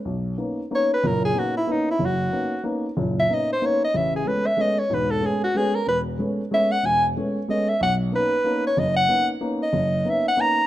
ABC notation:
X:1
M:3/4
L:1/8
Q:"Swing" 1/4=186
K:B
V:1 name="Soprano saxophone"
z4 c B | A G F E D E | F4 z2 | z e d =c ^c d |
e G B e d c | B =A G F G ^A | B z3 e f | g z3 d e |
f z B3 c | d f2 z2 d- | d2 e f a2 |]
V:2 name="Grand piano"
B,,,2 [A,B,CD] z [A,B,CD] z | [F,,,A,,]2 [A,B,CD] z [A,B,CD] z | F,,,2 [A,B,CD] z [A,B,CD] z | [F,,,A,,]2 [A,B,CD] z [A,B,CD] z |
[=A,,,C,]2 [G,=A,B,C] z [G,A,B,C] z | [E,,,G,,]2 [G,=A,B,C] z [G,A,B,C] z | E,,,2 [G,=A,B,C] z [G,A,B,C] z | E,,,2 [G,=A,B,C] z [G,A,B,C] z |
B,,,2 [A,B,CD] z [A,B,CD] z | F,,,2 [A,B,CD] z [A,B,CD] z | F,,,2 [A,B,CD] z [A,B,CD] z |]